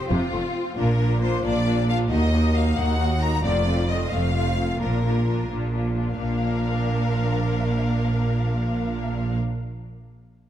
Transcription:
Already playing: C4
0.10 F1 F2 C3 F4
0.32 F1 F2 A3
0.76 A#1 A#2 A#3 D4 F4 A#4
0.98 A#3 D4 F4
1.21 A#3 D4 F4 C5
1.42 A#1 A#2 A#3 D4 F4 D5
1.65 A#3 D4 F4
1.87 A#3 D4 F4 F5
2.09 D#2 A#3 D#4 F#4 D#5
2.32 A#3 D#4 F#4
2.54 A#3 D#4 F#4 F5
2.76 D#2 A#3 D#4 F#4 F#5
2.98 A#3 D#4 F#4
3.20 A#3 D#4 F#4 A#5
3.43 F1 F2 A3 C4 F4 D5
3.66 A3 C4 F4
3.89 A3 C4 F4 D#5
4.11 F1 F2 A3 C4 F4 F5
4.34 A3 C4 F4
4.57 A3 C4 F4
4.79 A#1 A#2 A#3 D4 F4 A#4
5.03 A#3 D4 F4
5.26 A#3 D4 F4
5.49 A#1 A#2 A#3 D4 F4
5.72 A#3 D4 F4
5.94 A#3 D4 F4
6.17 A#1 A#2 A#3 D4 A#4 F5

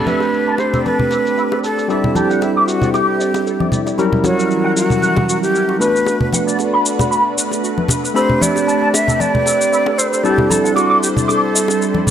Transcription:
Already playing: A3 C4 D4 G4 A4 D5 B5
0.07 B4 E5, high conga, cabasa
0.20 C5, high bongo, cabasa
0.33 cabasa
0.47 A5
0.58 C5, high bongo, cabasa
0.73 A4, low conga, cabasa
0.85 B4 A5, high conga, cabasa
0.99 low conga
1.11 A4, high bongo, cabasa
1.26 cabasa
1.37 E4, cabasa
1.51 A4, high bongo
1.64 A4, cabasa
1.78 A4, cabasa
1.88 G3 C4 D4 E4 G4 A4 D5, cabasa
2.04 high bongo, low conga
2.15 G4 A5, high conga, cabasa
2.30 F#5, cabasa
2.41 E4, high bongo, cabasa
2.56 D6
2.68 F#4, cabasa
2.82 D5, low conga, cabasa
2.93 G4 D6, high bongo, cabasa
3.20 D5, cabasa
3.34 high bongo, cabasa
3.46 A4, cabasa
3.60 D5, high conga
3.72 D5, low conga, cabasa
3.86 D5, high bongo, cabasa
3.97 E3 F#3 G3 C#4 E4 F#4 G4 A#4 F#5, cabasa
4.12 low conga
4.24 F#4 C#5, high bongo, high conga, cabasa
4.38 A#4, cabasa
4.51 cabasa
4.64 F#5
4.76 F#4, high bongo, cabasa
4.90 F#4, low conga, cabasa
5.02 F#5, high conga, cabasa
5.16 high bongo, low conga
5.28 F#4, cabasa
5.42 G4, cabasa
5.54 C#4, cabasa
5.69 F#4, high bongo
5.79 A3 B3 D4 F#4 B4, cabasa
5.95 B4, cabasa
6.06 B4, high bongo, cabasa
6.21 low conga
6.33 F#5, high conga, cabasa
6.47 D5, cabasa
6.59 high bongo, cabasa
6.73 B5
6.86 cabasa
6.99 B4, high bongo, low conga, cabasa
7.11 B5, cabasa
7.37 B4, cabasa
7.51 high bongo, cabasa
7.63 F#4, cabasa
7.78 B4, high conga
7.88 B4, high bongo, low conga, cabasa
8.04 B4, cabasa
8.14 A3 C4 D4 G4 A4 C5 B5, cabasa
8.29 low conga
8.41 D5 E5, high conga, cabasa
8.56 C5, high bongo, cabasa
8.67 A5, cabasa
8.82 A5
8.94 E5, high bongo, cabasa
9.08 A4, low conga, cabasa
9.20 D5 A5, high conga, cabasa
9.35 low conga
9.46 A4, high bongo, cabasa
9.61 cabasa
9.72 E4, cabasa
9.86 A4, high bongo
9.98 A4 C5, cabasa
10.12 A4, cabasa
10.23 G3 C4 D4 E4 G4 A4 C5 D5, cabasa
10.38 high bongo, low conga
10.50 A4 A5, high conga, cabasa
10.64 F#5, cabasa
10.76 F#4 D6, high bongo, cabasa
10.90 D6
11.02 G4, cabasa
11.16 D5, low conga, cabasa
11.28 A4 D6, high bongo, cabasa
11.54 D5, cabasa
11.68 high bongo, cabasa
11.80 A4, cabasa
11.95 D5, high conga
12.06 D5, low conga

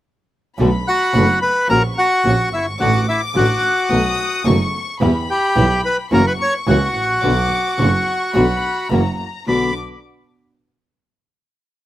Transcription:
0.59 B1 B2 D3 A3 B3 D4 F#4 A4 B5
0.88 F#4 F#5
1.14 F#1 B2 D3 A3 B3 D4 F#4 A4
1.42 B4 B5
1.68 A#1 A#3 C#4 F#4 A#4 A#5 C#6
1.98 F#4 F#5
2.24 A#1 A#3 C#4 F#4
2.52 G1 E4 E5
2.79 A1 D3 A3 D4 F#4 F#5 D6
3.08 E4 E5
3.34 A1 D3 A3 D4 F#4 F#5
3.89 B1 B2 D#3 A3 B3 D#4 F#4 A4 D#6
4.45 F#1 B2 D#3 A3 B3 D#4 F#4 A4 C#6
5.00 E2 B2 E3 G3 B3 E4 G4 B5
5.30 G4 G5
5.56 B1 B2 E3 G3 B3 E4 G4
5.85 B4 B5
6.11 F#1 C#3 E3 A#3 C#4 E4 F#4 A#4 A#5 C#6
6.27 B4 B5
6.41 C#5 C#6
6.67 C#2 C#3 E3 A#3 C#4 E4 F#4 F#5
6.95 A1
7.23 B1 B2 D3 B3 D4 F#4 D6
7.78 F#1 B2 D3 B3 D4 F#4 C#6
8.34 B1 B2 D3 B3 D4 F#4 B5
8.90 F#1 C#3 E3 A#3 C#4 E4 F#4 A#5
9.46 B1 B2 D3 B3 D4 F#4 B5 D6

